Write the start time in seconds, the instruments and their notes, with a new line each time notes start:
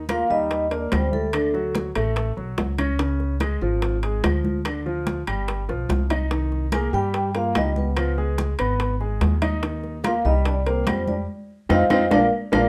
Already playing: upright bass D#2
0.09 grand piano A#3 A#4, trombone F4, vibraphone F5, high bongo, high conga, high timbale, low timbale, claves
0.30 upright bass D#2, grand piano G3 G4, trombone D#4, vibraphone D#5, high bongo
0.50 high bongo, high conga, high timbale
0.70 grand piano A#3 A#4, trombone D4, vibraphone D5, high bongo, high conga, high timbale
0.91 upright bass D2, grand piano G3 G4, trombone C4, vibraphone C5, high bongo, low bongo, high conga, high timbale, low timbale, claves
1.11 trombone A3, vibraphone A4, high conga
1.33 grand piano D3 D4, high bongo, high conga, high timbale, claves
1.54 grand piano F#3 F#4, high bongo, high conga
1.75 high bongo, high conga, high timbale, low timbale
1.95 upright bass A1, grand piano A3 A4, high conga, high timbale, claves
2.16 high bongo, high conga, high timbale
2.37 upright bass B1, grand piano F#3 F#4, high bongo, high conga
2.58 upright bass C#2, high bongo, low bongo, high conga, high timbale, low timbale
2.78 grand piano C#4 C#5, high bongo, high conga, high timbale, claves
2.99 grand piano C#3 C#4, high bongo, high conga, high timbale
3.20 high bongo, high conga
3.40 grand piano G#3 G#4, high bongo, high conga, high timbale, low timbale, claves
3.61 upright bass G#1, grand piano F3 F4, high bongo
3.82 high bongo, high conga, high timbale
4.03 grand piano G#3 G#4, high bongo, high conga, high timbale
4.24 upright bass D2, grand piano F3 F4, high bongo, low bongo, high conga, high timbale, low timbale, claves
4.45 high conga
4.65 grand piano D3 D4, high bongo, high conga, high timbale, claves
4.86 grand piano F3 F4, high bongo, high conga
5.07 high bongo, high conga, high timbale, low timbale
5.27 upright bass G1, grand piano G3 G4, high conga, high timbale, claves
5.48 high bongo, high conga, high timbale
5.69 upright bass B1, grand piano F3 F4, high bongo, high conga
5.89 upright bass C2, low bongo, high conga, high timbale, low timbale
6.10 grand piano D#4 D#5, low bongo, high conga, high timbale, claves
6.31 grand piano D#3 D#4, high bongo, high conga, high timbale
6.52 high bongo, high conga
6.72 grand piano A#3 A#4, trombone G#4, vibraphone G#5, high bongo, high conga, high timbale, low timbale, claves
6.93 upright bass G2, grand piano G3 G4, trombone G4, vibraphone G5, high bongo
7.14 high bongo, high conga, high timbale
7.34 grand piano A#3 A#4, trombone F4, vibraphone F5, high bongo, high conga, high timbale
7.55 upright bass C#2, grand piano G3 G4, trombone D#4, vibraphone D#5, high bongo, low bongo, high conga, high timbale, low timbale, claves
7.76 trombone B3, vibraphone B4, high conga
7.97 grand piano F3 F4, high bongo, high timbale, claves
8.18 grand piano G#3 G#4, high bongo, high conga
8.38 high bongo, high conga, high timbale, low timbale
8.59 upright bass G#1, grand piano B3 B4, high conga, high timbale, claves
8.80 high bongo, high conga, high timbale
9.00 grand piano G#3 G#4, high bongo, high conga
9.21 upright bass D#2, high bongo, low bongo, high conga, high timbale, low timbale
9.42 grand piano D#4 D#5, high bongo, high conga, high timbale, claves
9.62 grand piano D#3 D#4, high bongo, high conga, high timbale
9.83 high bongo, high conga
10.04 grand piano A#3 A#4, trombone F4, vibraphone F5, high bongo, high conga, high timbale, low timbale, claves
10.25 upright bass C2, grand piano G3 G4, trombone D#4, vibraphone D#5, high bongo
10.45 trombone D4, vibraphone D5, high bongo, high conga, high timbale
10.66 grand piano A#3 A#4, trombone C4, vibraphone C5, high bongo, high conga, high timbale
10.87 upright bass F2, grand piano G3 G4, high bongo, low bongo, high conga, high timbale, low timbale, claves
11.07 trombone D4, vibraphone D5, high conga
11.69 upright bass F2, trombone C4, grand piano C4 D#4 F4, vibraphone C5 D#5 F5, high bongo, high conga, high timbale, claves
11.90 upright bass F2, trombone C4, grand piano C4 D#4 F4, vibraphone C5 D#5 F5, high bongo, high conga, high timbale, claves
12.11 upright bass A#1, grand piano A#3 D4 F4, trombone D4, vibraphone A#4 D5 F5, high bongo, high conga, high timbale, claves
12.52 upright bass A#1, grand piano A#3 D4 F4, trombone D4, vibraphone A#4 D5 F5, high bongo, high conga, high timbale, claves